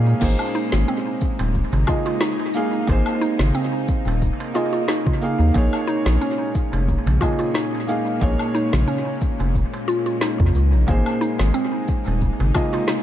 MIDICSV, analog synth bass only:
0, 0, Header, 1, 2, 480
1, 0, Start_track
1, 0, Tempo, 666667
1, 157, Time_signature, 4, 2, 24, 8
1, 9381, End_track
2, 0, Start_track
2, 0, Title_t, "Analog synth bass"
2, 0, Program_c, 0, 38
2, 0, Note_on_c, 0, 46, 93
2, 102, Note_off_c, 0, 46, 0
2, 157, Note_on_c, 0, 32, 104
2, 254, Note_off_c, 0, 32, 0
2, 526, Note_on_c, 0, 32, 93
2, 609, Note_off_c, 0, 32, 0
2, 1006, Note_on_c, 0, 27, 98
2, 1182, Note_off_c, 0, 27, 0
2, 1247, Note_on_c, 0, 32, 92
2, 1330, Note_off_c, 0, 32, 0
2, 2077, Note_on_c, 0, 32, 90
2, 2174, Note_off_c, 0, 32, 0
2, 2444, Note_on_c, 0, 32, 89
2, 2528, Note_off_c, 0, 32, 0
2, 2923, Note_on_c, 0, 27, 105
2, 3100, Note_off_c, 0, 27, 0
2, 3884, Note_on_c, 0, 39, 81
2, 3968, Note_off_c, 0, 39, 0
2, 3997, Note_on_c, 0, 34, 102
2, 4095, Note_off_c, 0, 34, 0
2, 4364, Note_on_c, 0, 34, 93
2, 4448, Note_off_c, 0, 34, 0
2, 4847, Note_on_c, 0, 29, 102
2, 5023, Note_off_c, 0, 29, 0
2, 5085, Note_on_c, 0, 34, 91
2, 5169, Note_off_c, 0, 34, 0
2, 5918, Note_on_c, 0, 34, 104
2, 6015, Note_off_c, 0, 34, 0
2, 6287, Note_on_c, 0, 34, 93
2, 6370, Note_off_c, 0, 34, 0
2, 6766, Note_on_c, 0, 29, 101
2, 6942, Note_off_c, 0, 29, 0
2, 7487, Note_on_c, 0, 41, 83
2, 7570, Note_off_c, 0, 41, 0
2, 7597, Note_on_c, 0, 37, 93
2, 7725, Note_on_c, 0, 34, 90
2, 7736, Note_off_c, 0, 37, 0
2, 7809, Note_off_c, 0, 34, 0
2, 7838, Note_on_c, 0, 32, 104
2, 7935, Note_off_c, 0, 32, 0
2, 8207, Note_on_c, 0, 32, 95
2, 8290, Note_off_c, 0, 32, 0
2, 8690, Note_on_c, 0, 27, 99
2, 8864, Note_off_c, 0, 27, 0
2, 8928, Note_on_c, 0, 32, 86
2, 9010, Note_off_c, 0, 32, 0
2, 9381, End_track
0, 0, End_of_file